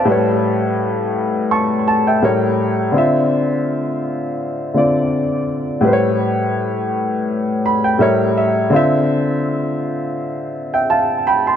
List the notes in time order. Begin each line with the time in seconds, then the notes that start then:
Already playing: F5 A5
0.05 A2 G3 B4
0.12 C#5
1.51 A5 C#6
1.88 A5
2.07 E5 G5
2.22 A2 G3 A#4 C#5
2.92 D3 C4
2.96 F4 E5
4.74 D3 C4 F4 D5
5.81 A2 G3 B4
5.87 C5
5.93 C#5
7.66 B5
7.84 G5
7.99 A2 G3 A#4 C#5 E5
8.38 E5
8.70 D3 C4 F4
8.76 E5
10.74 E5 G5
10.90 F5 A5
11.27 G5 B5
11.47 A5 C6